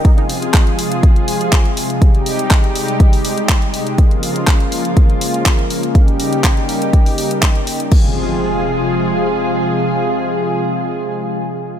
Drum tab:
CC |----------------|----------------|----------------|----------------|
HH |xxoxxxoxxxoxxxox|xxoxxxoxxooxxxox|xxoxxxoxxxoxxxox|xxoxxxoxxooxxxox|
CP |----x-------x---|----x-------x---|----x-------x---|----x-------x---|
BD |o---o---o---o---|o---o---o---o---|o---o---o---o---|o---o---o---o---|

CC |x---------------|----------------|
HH |----------------|----------------|
CP |----------------|----------------|
BD |o---------------|----------------|